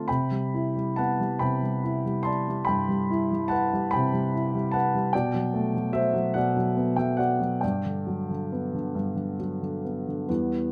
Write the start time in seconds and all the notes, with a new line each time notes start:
0.08 C3 G5 B5
0.31 G3
0.54 E4
0.76 G3
0.96 B3 F#5 A5
1.20 G3
1.39 C3 G5 B5
1.62 G3
1.84 E4
2.05 G3
2.23 D5 A5 C6
2.49 G3
2.65 G2 G5 B5
2.89 G3
3.10 E4
3.31 G3
3.48 B4 F#5 A5
3.73 G3
3.91 G5 B5
3.95 C3
4.13 G3
4.34 E4
4.55 G3
4.72 F#5 A5
4.76 B4
4.95 G3
5.13 B2 D5 G5
5.34 F#3
5.54 A3
5.74 F#3
5.93 F#4 C5 E5
6.14 F#3
6.34 B2 D5 F#5
6.57 F#3
6.77 B3
6.96 F#3 E5 G5
7.17 F#4 D5 F#5
7.40 F#3
7.61 G2 D5 G5
7.85 D3
8.07 F#3
8.30 D3
8.52 B3
8.74 D3
8.95 G2
9.16 D3
9.40 F#3
9.62 D3
9.85 B3
10.08 D3
10.29 E2 G3 B3